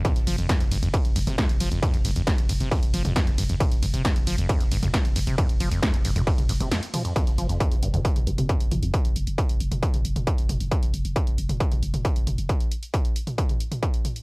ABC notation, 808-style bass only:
X:1
M:4/4
L:1/16
Q:1/4=135
K:Cphr
V:1 name="808-style bass" clef=bass
z F,,, F,,, F,,, z F,,, F,,, F,,, z F,,, F,,, F,,, z F,,, F,,, F,,, | z F,,, F,,, F,,, z F,,, F,,, F,,, z F,,, F,,, F,,, z F,,, F,,, F,,, | z F,,, F,,, F,,, z F,,, F,,, F,,, z F,,, F,,, F,,, z F,,, F,,, F,,, | z F,,, F,,, F,,, z F,,, F,,, F,,, z F,,, F,,, F,,, z4 |
z F,,, F,,, F,,, z F,,, F,,, F,,, z F,,, F,,, F,,, z F,,, F,,, F,,, | z F,,, F,,, F,,, z F,,, F,,, F,,, z F,,, F,,, F,,, z F,,, F,,, F,,, | z F,,, F,,, F,,, z F,,, F,,, F,,, z F,,, F,,, F,,, z F,,, F,,, F,,, | z16 |]